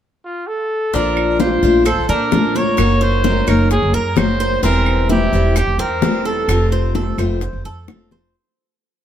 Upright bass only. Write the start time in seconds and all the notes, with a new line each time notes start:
0.94 A#1
1.63 A#1
1.98 A#1
2.09 A#2
2.32 A#1
2.78 F#1
3.48 F#1
3.83 F#1
3.93 F#2
4.17 F#1
4.63 E1
5.33 E1
5.67 E1
5.78 E2
6.01 E1
6.48 F1
7.18 F1
7.53 F1
7.65 F2
7.88 F1